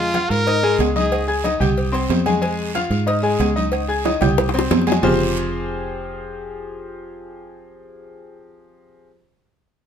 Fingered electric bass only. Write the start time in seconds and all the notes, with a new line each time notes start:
Already playing: F2
0.30 G#2
0.79 C#2
1.60 C2
2.10 F2
2.90 G#2
3.40 C#2
4.21 C2
4.71 F2
5.03 F1